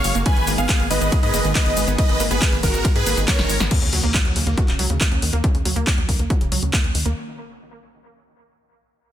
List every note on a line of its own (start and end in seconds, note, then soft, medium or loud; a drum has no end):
0.00 0.22 C#3 medium
0.00 0.22 G#3 medium
0.00 0.22 A#3 medium
0.00 0.22 F#4 medium
0.00 0.15 C#5 medium
0.00 0.15 F5 loud
0.04 0.13 F#1 loud
0.04 0.09 F#3 medium
0.04 open hi-hat loud
0.04 shaker medium
0.15 0.24 F#1 medium
0.15 0.23 A#3 loud
0.15 closed hi-hat soft
0.15 shaker soft
0.26 3.68 D#3 medium
0.26 0.33 D#3 medium
0.26 3.68 G#3 medium
0.26 3.68 B3 medium
0.26 3.68 G#4 medium
0.26 0.50 B4 medium
0.26 0.50 G#5 loud
0.26 kick loud
0.26 closed hi-hat medium
0.26 ride medium
0.26 shaker soft
0.37 0.45 G#1 medium
0.37 0.44 D#3 medium
0.37 closed hi-hat soft
0.47 0.56 G#1 loud
0.47 0.52 A#3 loud
0.47 open hi-hat loud
0.47 shaker medium
0.58 0.67 G#1 medium
0.58 0.66 B3 loud
0.58 0.82 G#4 medium
0.58 0.82 F5 loud
0.58 closed hi-hat soft
0.58 shaker soft
0.69 0.72 A#3 medium
0.69 kick loud
0.69 clap loud
0.69 closed hi-hat medium
0.69 ride medium
0.69 shaker soft
0.80 0.88 G#1 medium
0.80 0.85 A#3 medium
0.80 closed hi-hat soft
0.90 0.99 G#1 loud
0.90 0.94 D#3 medium
0.90 1.15 B4 medium
0.90 1.15 D#5 loud
0.90 open hi-hat loud
0.90 shaker medium
1.01 1.10 G#1 loud
1.01 1.04 B3 medium
1.01 closed hi-hat soft
1.01 shaker soft
1.12 1.15 A#4 medium
1.12 kick loud
1.12 closed hi-hat medium
1.12 ride medium
1.12 shaker soft
1.23 1.32 G#2 medium
1.23 1.31 D#3 medium
1.23 1.47 B4 medium
1.23 1.47 D#5 loud
1.23 closed hi-hat soft
1.34 1.42 F#1 loud
1.34 1.39 A#3 loud
1.34 open hi-hat loud
1.34 shaker medium
1.44 1.53 G#1 medium
1.44 1.52 D#3 medium
1.44 closed hi-hat soft
1.44 shaker soft
1.55 1.63 B3 loud
1.55 1.87 B4 medium
1.55 1.87 D#5 medium
1.55 1.87 D#5 loud
1.55 kick loud
1.55 clap loud
1.55 closed hi-hat medium
1.55 ride medium
1.55 shaker soft
1.66 1.75 G#1 medium
1.66 1.71 D#4 medium
1.66 closed hi-hat soft
1.77 1.85 G#1 loud
1.77 1.82 G#3 medium
1.77 open hi-hat loud
1.77 shaker medium
1.87 1.96 G#1 loud
1.87 1.95 B3 loud
1.87 closed hi-hat soft
1.87 shaker soft
1.98 2.06 D#3 medium
1.98 2.23 B4 medium
1.98 2.23 D#5 loud
1.98 kick loud
1.98 closed hi-hat medium
1.98 ride medium
1.98 shaker soft
2.09 2.18 G#1 medium
2.09 2.17 D#3 medium
2.09 closed hi-hat soft
2.20 2.29 G#1 loud
2.20 2.25 A#3 loud
2.20 open hi-hat loud
2.20 shaker medium
2.31 2.39 G#1 medium
2.31 2.38 B3 loud
2.31 2.55 G#4 medium
2.31 2.55 B4 medium
2.31 2.55 B4 loud
2.31 closed hi-hat soft
2.31 shaker soft
2.42 2.45 A#3 medium
2.42 kick loud
2.42 clap loud
2.42 closed hi-hat medium
2.42 ride medium
2.42 shaker soft
2.52 2.61 G#1 medium
2.52 2.57 A#3 medium
2.52 closed hi-hat soft
2.63 2.72 G#1 loud
2.63 2.66 D#3 medium
2.63 2.87 F#4 medium
2.63 2.87 A#4 loud
2.63 kick medium
2.63 open hi-hat loud
2.63 shaker medium
2.74 2.83 G#1 loud
2.74 2.77 B3 medium
2.74 closed hi-hat soft
2.74 shaker soft
2.85 2.88 A#4 medium
2.85 kick loud
2.85 closed hi-hat medium
2.85 ride medium
2.85 shaker soft
2.95 3.04 G#2 medium
2.95 3.03 D#3 medium
2.95 3.20 G#4 medium
2.95 3.20 B4 medium
2.95 3.20 B4 loud
2.95 closed hi-hat soft
3.06 3.15 G#1 loud
3.06 3.11 A#3 loud
3.06 open hi-hat loud
3.06 shaker medium
3.17 3.26 G#1 loud
3.17 3.25 D#3 medium
3.17 closed hi-hat soft
3.17 shaker soft
3.28 3.36 B3 loud
3.28 3.60 A#4 medium
3.28 3.60 C#5 loud
3.28 3.60 C#5 medium
3.28 kick loud
3.28 snare medium
3.28 clap loud
3.28 closed hi-hat medium
3.28 ride medium
3.28 shaker soft
3.39 3.47 F#1 medium
3.39 3.44 D#4 medium
3.39 snare medium
3.39 closed hi-hat soft
3.49 3.58 G#1 loud
3.49 3.55 G#3 medium
3.49 open hi-hat loud
3.49 shaker medium
3.60 3.69 G#1 medium
3.60 3.68 B3 loud
3.60 snare medium
3.60 shaker soft
3.71 3.79 C#3 medium
3.71 kick loud
3.71 closed hi-hat medium
3.71 crash medium
3.71 impact medium
3.82 3.91 D#2 medium
3.82 3.90 C#3 medium
3.82 closed hi-hat soft
3.93 4.01 D#2 loud
3.93 3.98 F#3 loud
3.93 open hi-hat loud
4.03 4.12 D#2 medium
4.03 4.11 A#3 loud
4.03 closed hi-hat soft
4.14 4.17 F#3 medium
4.14 kick loud
4.14 clap loud
4.14 closed hi-hat medium
4.25 4.34 D#2 medium
4.25 4.30 F#3 medium
4.25 closed hi-hat soft
4.36 4.45 D#2 loud
4.36 4.39 C#3 medium
4.36 open hi-hat loud
4.47 4.55 D#2 medium
4.47 4.50 A#3 medium
4.47 closed hi-hat soft
4.57 4.60 F#4 medium
4.57 kick loud
4.57 closed hi-hat medium
4.68 4.77 D#1 medium
4.68 4.76 C#3 medium
4.68 clap soft
4.68 closed hi-hat soft
4.79 4.88 C#2 loud
4.79 4.84 F#3 loud
4.79 open hi-hat loud
4.90 4.99 D#2 medium
4.90 4.97 C#3 medium
4.90 closed hi-hat soft
5.01 5.08 A#3 loud
5.01 kick loud
5.01 clap loud
5.01 closed hi-hat medium
5.11 5.20 D#2 medium
5.11 5.17 C#4 medium
5.11 closed hi-hat soft
5.22 5.31 D#2 loud
5.22 5.27 D#3 medium
5.22 open hi-hat loud
5.33 5.42 D#2 medium
5.33 5.41 A#3 loud
5.33 closed hi-hat soft
5.44 5.51 C#3 medium
5.44 kick loud
5.44 closed hi-hat medium
5.55 5.63 D#2 medium
5.55 5.62 C#3 medium
5.55 closed hi-hat soft
5.65 5.74 D#2 loud
5.65 5.70 F#3 loud
5.65 open hi-hat loud
5.76 5.85 D#2 medium
5.76 5.84 A#3 loud
5.76 closed hi-hat soft
5.87 5.90 F#3 medium
5.87 kick loud
5.87 clap loud
5.87 closed hi-hat medium
5.98 6.06 D#2 medium
5.98 6.03 F#3 medium
5.98 closed hi-hat soft
6.09 6.17 D#2 loud
6.09 6.12 C#3 medium
6.09 kick medium
6.09 open hi-hat loud
6.19 6.28 D#2 medium
6.19 6.22 A#3 medium
6.19 closed hi-hat soft
6.30 6.33 F#4 medium
6.30 kick loud
6.30 closed hi-hat medium
6.41 6.50 D#1 medium
6.41 6.49 C#3 medium
6.41 closed hi-hat soft
6.52 6.60 C#2 loud
6.52 6.57 F#3 loud
6.52 open hi-hat loud
6.62 6.71 D#2 medium
6.62 6.70 C#3 medium
6.62 closed hi-hat soft
6.73 6.81 A#3 loud
6.73 kick loud
6.73 clap loud
6.73 closed hi-hat medium
6.84 6.93 D#2 medium
6.84 6.89 C#4 medium
6.84 closed hi-hat soft
6.95 7.03 D#2 loud
6.95 7.00 D#3 medium
6.95 open hi-hat loud
7.05 7.14 D#2 medium
7.05 7.13 A#3 loud
7.05 closed hi-hat soft